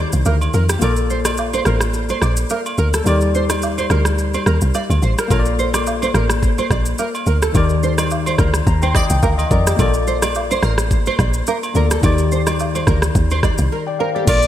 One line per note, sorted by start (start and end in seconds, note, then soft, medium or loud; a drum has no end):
0.00 0.77 D#3 medium
0.00 0.77 D#4 medium
0.00 0.78 G4 medium
0.00 0.79 D5 medium
0.12 0.24 C2 medium
0.12 shaker medium
0.25 0.49 D2 medium
0.25 0.35 A#4 medium
0.25 low woodblock medium
0.25 shaker medium
0.41 high agogo medium
0.41 shaker medium
0.53 0.77 F2 loud
0.53 0.63 A#4 medium
0.53 shaker medium
0.69 0.77 G4 medium
0.69 cross-stick loud
0.69 shaker loud
0.79 1.62 A#1 loud
0.79 3.01 A#3 medium
0.79 3.02 F4 medium
0.79 3.02 A4 medium
0.79 0.91 A#4 medium
0.79 high agogo medium
0.79 shaker medium
0.84 3.03 D5 medium
0.96 shaker medium
1.10 1.19 C5 medium
1.10 shaker medium
1.25 1.33 D5 medium
1.25 cross-stick loud
1.25 high agogo medium
1.25 shaker loud
1.37 low woodblock medium
1.37 shaker medium
1.53 1.61 C5 medium
1.53 high agogo medium
1.53 shaker medium
1.65 2.12 A1 medium
1.65 1.75 A#4 medium
1.65 cross-stick medium
1.65 shaker medium
1.81 cross-stick loud
1.81 shaker medium
1.94 shaker medium
2.09 2.17 C5 medium
2.09 high agogo medium
2.09 shaker soft
2.22 2.45 A#1 medium
2.22 2.31 D5 medium
2.22 cross-stick medium
2.22 shaker medium
2.37 shaker medium
2.50 2.59 A#4 medium
2.50 low woodblock medium
2.50 shaker medium
2.66 high agogo medium
2.66 shaker soft
2.78 3.01 D2 medium
2.78 2.87 A#4 medium
2.78 shaker medium
2.94 3.01 A4 medium
2.94 cross-stick loud
2.94 shaker loud
3.04 3.86 D#2 loud
3.04 5.25 G3 medium
3.04 5.26 D#4 medium
3.04 5.27 G4 medium
3.04 3.15 A#4 medium
3.04 high agogo medium
3.04 shaker medium
3.08 5.28 D5 medium
3.21 shaker medium
3.35 3.44 C5 medium
3.35 shaker medium
3.50 3.57 D5 medium
3.50 cross-stick medium
3.50 high agogo medium
3.50 shaker loud
3.62 low woodblock medium
3.62 shaker medium
3.78 3.85 C5 medium
3.78 high agogo medium
3.78 shaker medium
3.90 4.36 D2 loud
3.90 4.00 A#4 medium
3.90 cross-stick medium
3.90 shaker medium
4.05 cross-stick loud
4.05 shaker medium
4.18 shaker medium
4.34 4.41 C5 medium
4.34 high agogo medium
4.34 shaker soft
4.46 4.59 D#2 medium
4.46 4.56 A#4 medium
4.46 cross-stick medium
4.46 shaker medium
4.61 4.72 C2 medium
4.61 shaker medium
4.74 4.84 D5 medium
4.74 low woodblock medium
4.74 shaker medium
4.90 5.00 D2 medium
4.90 high agogo medium
4.90 shaker soft
5.02 5.15 A1 loud
5.02 5.12 C5 medium
5.02 shaker medium
5.18 5.26 A#4 medium
5.18 cross-stick loud
5.18 shaker loud
5.28 6.11 A#1 loud
5.28 7.49 A#3 medium
5.28 7.50 F4 medium
5.28 7.51 A4 medium
5.28 5.40 A#4 medium
5.28 kick loud
5.28 high agogo medium
5.28 shaker medium
5.33 5.39 C#5 medium
5.39 7.55 D5 medium
5.45 shaker medium
5.59 5.68 C5 medium
5.59 shaker medium
5.74 5.81 D5 medium
5.74 cross-stick medium
5.74 high agogo medium
5.74 shaker loud
5.87 low woodblock medium
5.87 shaker medium
6.02 6.10 C5 medium
6.02 high agogo medium
6.02 shaker medium
6.14 6.60 A1 medium
6.14 6.24 A#4 medium
6.14 cross-stick medium
6.14 shaker medium
6.30 cross-stick loud
6.30 shaker medium
6.43 kick medium
6.43 shaker medium
6.58 6.66 C5 medium
6.58 high agogo medium
6.58 shaker soft
6.71 6.94 A#1 medium
6.71 6.80 D5 medium
6.71 kick loud
6.71 cross-stick medium
6.71 shaker medium
6.85 shaker medium
6.98 7.08 A#4 medium
6.98 low woodblock medium
6.98 shaker medium
7.15 high agogo medium
7.15 shaker soft
7.26 7.50 D2 medium
7.26 7.36 A#4 medium
7.26 shaker medium
7.42 7.50 A4 medium
7.42 cross-stick loud
7.42 shaker loud
7.52 8.35 D#2 loud
7.52 9.74 D#3 medium
7.52 9.75 D#4 medium
7.52 9.75 G4 medium
7.52 7.64 A#4 medium
7.52 kick loud
7.52 high agogo medium
7.52 shaker medium
7.57 9.50 D5 medium
7.69 shaker medium
7.83 7.92 C5 medium
7.83 shaker medium
7.98 8.06 D5 medium
7.98 cross-stick medium
7.98 high agogo medium
7.98 shaker loud
8.11 low woodblock medium
8.11 shaker medium
8.26 8.34 C5 medium
8.26 high agogo medium
8.26 shaker medium
8.38 8.62 D2 medium
8.38 8.48 A#4 medium
8.38 8.65 C6 medium
8.38 kick medium
8.38 cross-stick medium
8.38 shaker medium
8.54 cross-stick loud
8.54 shaker medium
8.67 9.02 D#2 loud
8.67 8.81 A#5 medium
8.67 kick medium
8.67 shaker medium
8.82 8.95 C5 medium
8.82 8.94 G5 medium
8.82 high agogo medium
8.82 shaker soft
8.95 9.04 D5 medium
8.95 9.09 D#5 medium
8.95 kick loud
8.95 cross-stick medium
8.95 shaker medium
9.10 9.21 C2 medium
9.10 9.22 G5 medium
9.10 shaker medium
9.23 9.46 D2 medium
9.23 9.32 A#4 medium
9.23 9.37 F5 medium
9.23 kick medium
9.23 low woodblock medium
9.23 shaker medium
9.38 9.50 D#5 medium
9.38 high agogo medium
9.38 shaker soft
9.51 9.74 F2 loud
9.51 9.60 A#4 medium
9.51 9.77 D5 medium
9.51 kick medium
9.51 shaker medium
9.67 9.74 G4 medium
9.67 cross-stick medium
9.67 shaker loud
9.76 10.59 A#1 loud
9.76 11.70 A#3 medium
9.76 11.71 F4 medium
9.76 11.72 A4 medium
9.76 9.88 A#4 medium
9.76 kick loud
9.76 high agogo medium
9.76 shaker medium
9.81 11.72 D5 medium
9.94 shaker medium
10.07 10.16 C5 medium
10.07 shaker medium
10.22 10.30 D5 medium
10.22 cross-stick medium
10.22 high agogo medium
10.22 shaker loud
10.35 low woodblock medium
10.35 shaker medium
10.51 10.64 C5 medium
10.51 high agogo medium
10.51 shaker medium
10.63 11.09 A1 loud
10.63 10.72 A#4 medium
10.63 cross-stick medium
10.63 shaker medium
10.78 cross-stick medium
10.78 shaker medium
10.91 kick medium
10.91 shaker medium
11.06 11.14 C5 medium
11.06 high agogo medium
11.06 shaker soft
11.19 11.42 A#1 loud
11.19 11.28 D5 medium
11.19 kick loud
11.19 cross-stick medium
11.19 shaker medium
11.34 shaker medium
11.47 11.57 A#4 medium
11.47 low woodblock medium
11.47 shaker medium
11.63 high agogo medium
11.63 shaker medium
11.74 11.98 D2 loud
11.74 12.03 A#3 medium
11.74 12.03 F4 medium
11.74 12.03 A4 medium
11.74 11.85 A#4 medium
11.74 12.04 D5 medium
11.74 shaker medium
11.91 11.99 A4 medium
11.91 cross-stick loud
11.91 shaker loud
12.01 12.83 D#2 loud
12.01 14.22 D#3 medium
12.01 14.23 D#4 medium
12.01 14.24 G4 medium
12.01 12.13 A#4 medium
12.01 kick loud
12.01 high agogo medium
12.01 shaker medium
12.06 13.69 D5 medium
12.18 shaker medium
12.32 12.41 C5 medium
12.32 shaker medium
12.47 12.54 D5 medium
12.47 cross-stick medium
12.47 high agogo medium
12.47 shaker loud
12.59 low woodblock medium
12.59 shaker medium
12.75 12.83 C5 medium
12.75 high agogo medium
12.75 shaker medium
12.87 13.10 D2 loud
12.87 12.97 A#4 medium
12.87 kick medium
12.87 cross-stick medium
12.87 shaker medium
13.02 cross-stick loud
13.02 shaker medium
13.15 13.51 D#2 loud
13.15 kick medium
13.15 shaker medium
13.30 13.39 C5 medium
13.30 high agogo medium
13.30 shaker soft
13.43 13.53 D5 medium
13.43 kick loud
13.43 cross-stick medium
13.43 shaker medium
13.58 13.69 C2 medium
13.58 shaker medium
13.72 13.81 A#4 medium
13.87 13.99 D5 medium
13.87 13.99 G5 medium
13.99 14.09 A#4 medium
13.99 14.14 C5 medium
13.99 14.14 F5 medium
14.15 14.23 G4 medium
14.15 14.42 A4 medium
14.15 14.29 D5 medium
14.25 14.47 A#1 loud
14.25 14.47 A#3 medium
14.25 14.47 F4 medium
14.25 14.37 A#4 loud
14.25 kick loud
14.25 crash loud
14.25 high agogo medium
14.25 shaker medium
14.29 14.47 D5 loud
14.29 14.47 D5 medium
14.42 shaker medium